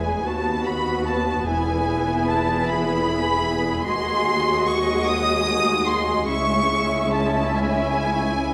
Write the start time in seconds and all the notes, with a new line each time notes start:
Already playing: E1 E2 G#3 E4 G#4 B4 G#5
0.26 D#2 B3 F#4 A5
0.67 B5
1.08 A5
1.47 E1 E2 E4 G#4 G#5
2.27 A5
2.67 B5
3.86 D#2 G#3 F#4 D#5 C6
4.67 C#6
5.07 D#6
5.88 C6
6.28 C#2 C#4 E4 E5 C#6
7.15 A5
7.57 G#5